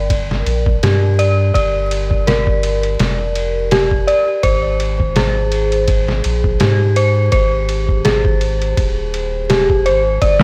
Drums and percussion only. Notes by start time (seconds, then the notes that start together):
0.10 kick, ride
0.31 snare
0.46 ride
0.66 kick
0.83 snare, ride
1.19 ride
1.55 kick, ride
1.91 ride
2.11 kick
2.27 snare, ride
2.47 kick
2.63 ride
2.83 ride
3.00 snare, ride
3.36 ride
3.71 snare, ride
3.91 kick
4.08 ride
4.43 kick, ride
4.80 ride
5.00 kick
5.16 snare, ride
5.52 ride
5.72 ride
5.88 kick, ride
6.08 snare
6.24 ride
6.44 kick
6.60 snare, ride
6.96 ride
7.32 kick, ride
7.69 ride
7.89 kick
8.05 snare, ride
8.25 kick
8.41 ride
8.62 ride
8.77 kick, ride
9.14 ride
9.50 snare, ride
9.70 kick
9.86 ride
10.22 kick, ride